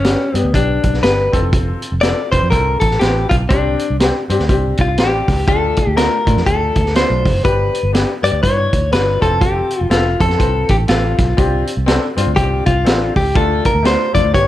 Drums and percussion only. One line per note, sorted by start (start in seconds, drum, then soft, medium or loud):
0.04 snare loud
0.04 closed hi-hat medium
0.35 closed hi-hat medium
0.54 kick medium
0.54 closed hi-hat medium
0.83 kick medium
0.83 closed hi-hat medium
0.94 snare soft
1.03 snare loud
1.03 closed hi-hat medium
1.33 kick medium
1.33 closed hi-hat medium
1.53 kick loud
1.53 closed hi-hat medium
1.82 closed hi-hat medium
2.03 snare loud
2.03 closed hi-hat medium
2.33 kick medium
2.33 closed hi-hat medium
2.52 kick medium
2.52 closed hi-hat medium
2.81 kick medium
2.81 closed hi-hat medium
2.91 snare soft
3.01 snare loud
3.01 closed hi-hat medium
3.31 kick medium
3.31 closed hi-hat medium
3.50 kick loud
3.50 closed hi-hat medium
3.79 closed hi-hat medium
4.00 snare loud
4.00 closed hi-hat medium
4.30 closed hi-hat medium
4.39 snare soft
4.49 kick loud
4.49 closed hi-hat medium
4.77 kick medium
4.77 closed hi-hat medium
4.98 snare loud
4.98 closed hi-hat medium
5.28 kick medium
5.28 snare soft
5.28 open hi-hat soft
5.48 kick loud
5.48 closed hi-hat medium
5.76 kick medium
5.76 closed hi-hat medium
5.97 snare loud
5.97 closed hi-hat medium
6.27 kick medium
6.27 closed hi-hat medium
6.37 snare soft
6.46 kick loud
6.46 closed hi-hat medium
6.75 kick medium
6.75 closed hi-hat medium
6.86 snare soft
6.95 snare loud
6.95 closed hi-hat medium
7.26 kick medium
7.26 snare soft
7.26 open hi-hat soft
7.45 kick loud
7.45 closed hi-hat medium
7.75 closed hi-hat medium
7.95 snare loud
7.95 closed hi-hat medium
8.25 closed hi-hat medium
8.44 kick medium
8.44 closed hi-hat medium
8.73 kick medium
8.73 closed hi-hat medium
8.92 snare loud
8.92 closed hi-hat medium
9.22 kick medium
9.22 closed hi-hat medium
9.41 kick loud
9.41 closed hi-hat medium
9.70 closed hi-hat medium
9.91 snare loud
9.91 closed hi-hat medium
10.20 kick medium
10.20 closed hi-hat medium
10.30 snare soft
10.40 kick loud
10.40 closed hi-hat medium
10.69 kick medium
10.69 closed hi-hat medium
10.88 snare loud
10.88 closed hi-hat medium
11.18 kick medium
11.18 snare soft
11.18 closed hi-hat medium
11.38 kick loud
11.38 closed hi-hat medium
11.67 closed hi-hat medium
11.88 snare loud
11.88 closed hi-hat medium
12.17 closed hi-hat medium
12.37 kick medium
12.37 closed hi-hat medium
12.66 kick medium
12.66 closed hi-hat medium
12.86 snare loud
12.86 closed hi-hat medium
13.16 kick medium
13.16 open hi-hat soft
13.36 kick loud
13.36 closed hi-hat medium
13.65 kick medium
13.65 closed hi-hat medium
13.85 snare loud
13.85 closed hi-hat medium
14.15 kick medium
14.15 closed hi-hat medium
14.35 kick loud
14.35 closed hi-hat medium